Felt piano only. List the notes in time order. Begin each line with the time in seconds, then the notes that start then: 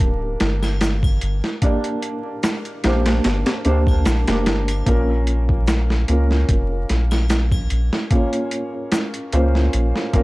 Already playing: A#3 D4 G4 A#4
1.62 A#3 D4 G4 D5
2.84 A#3 D4 G4 C5
3.65 A#3 D4 G4 C5
4.28 A#3 D4 G4 A#4
4.86 A#3 C#4 F4 A#4
6.08 A#3 C#4 F4 A#4
8.11 A#3 C#4 F4 C#5
9.33 A#3 C#4 F4 C5
10.13 A#3 C#4 F4 A#4